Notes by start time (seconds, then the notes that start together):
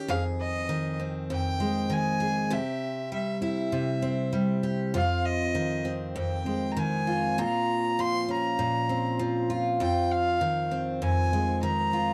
Already playing: D#3 C#4 G4
0.08 F2 G#4 F5
0.40 D#5
0.69 D#3
1.00 C4
1.30 F2 G5
1.60 G#3
1.90 D#3 G#5
2.20 G#4
2.50 C3 G4 E5
3.12 G3 E5
3.42 E4 E5
3.72 C3
4.02 C4
4.33 G3
4.63 G4
4.94 F2 F4 F5
5.25 D#5
5.55 D#3
5.85 C4
6.16 F2 G5
6.46 G#3
6.71 A#5
6.77 D#3 G#5
7.07 F4
7.38 A#2 F4 A#5
7.99 F3 C6
8.29 C#4 A#5
8.59 A#2
8.89 C4
9.19 F3
9.50 F4
9.80 F2 F4 G5
10.11 F5
10.41 D#3
10.71 C4
11.02 F2 G#5
11.33 G#3
11.63 D#3 A#5
11.93 F4